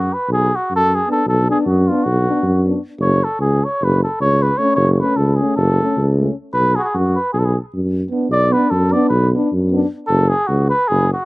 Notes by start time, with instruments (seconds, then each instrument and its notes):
Already playing: tuba F#2, cornet F#4
0.14 cornet B4
0.28 tuba B1
0.33 cornet G#4
0.55 cornet F#4
0.70 tuba F#2
0.76 cornet A4
0.95 cornet G#4
1.07 euphonium B3, french horn D4
1.12 cornet A4
1.26 tuba B1, cornet A4
1.48 euphonium B3, french horn D4, cornet G#4
1.66 tuba F#2, cornet F#4
1.88 euphonium B3, french horn D4, cornet F4
2.04 tuba B1, cornet F#4
2.27 euphonium B3, french horn D4
2.43 tuba F#2
2.65 euphonium B3, french horn D4
3.00 tuba F#1, cornet C#5
3.24 cornet A4
3.39 tuba C#2, cornet G#4
3.65 cornet C#5
3.81 tuba F#1, cornet B4
4.04 cornet A4
4.21 tuba C#2, cornet C#5
4.42 cornet B4
4.58 euphonium A3, french horn C#4, cornet C#5
4.75 tuba F#1, cornet C#5
4.92 cornet C#5
4.97 euphonium A3, french horn C#4, cornet B4
5.17 tuba C#2, cornet A4
5.36 euphonium A3, cornet G#4
5.40 french horn C#4
5.56 tuba F#1, cornet A4
5.80 euphonium A3, french horn C#4
5.97 tuba C#2
6.18 euphonium A3, french horn C#4
6.53 tuba B1, cornet B4
6.75 cornet F#4 G#4
6.85 cornet G#4
6.93 tuba F#2, cornet F#4
7.16 cornet B4
7.33 tuba B1, cornet G#4
7.39 cornet A4
7.45 cornet G#4
7.74 tuba F#2
8.11 euphonium B3, french horn D4
8.29 tuba B1, cornet D5
8.50 euphonium B3, french horn D4, cornet B4
8.70 tuba F#2, cornet A4
8.92 euphonium B3, french horn D4, cornet D5
9.09 tuba B1, cornet B4
9.32 euphonium B3, french horn D4
9.52 tuba F#2
9.70 euphonium B3, french horn D4
10.07 tuba F#1, cornet A4
10.29 cornet G#4
10.47 tuba C#2, cornet F#4
10.70 cornet B4
10.88 tuba F#1, cornet G#4
11.13 cornet F#4